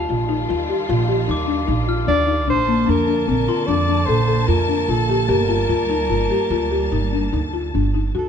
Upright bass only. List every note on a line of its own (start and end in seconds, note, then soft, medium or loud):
0.10 0.45 A#1 medium
0.50 0.67 D#2 medium
0.89 1.24 A#1 medium
1.29 1.64 D#2 medium
1.68 2.04 A#1 medium
2.08 2.48 D#2 medium
2.48 2.84 A#1 medium
2.88 3.24 F2 medium
3.28 3.46 A#1 medium
3.68 4.04 F2 medium
4.08 4.44 A#1 medium
4.48 4.84 F2 medium
4.88 5.30 A#1 medium
5.28 5.65 G1 medium
5.69 6.05 D2 medium
6.09 6.28 G1 medium
6.50 6.87 D2 medium
6.92 7.28 G1 medium
7.33 7.70 D2 medium
7.75 8.11 G1 medium
8.15 8.29 D2 medium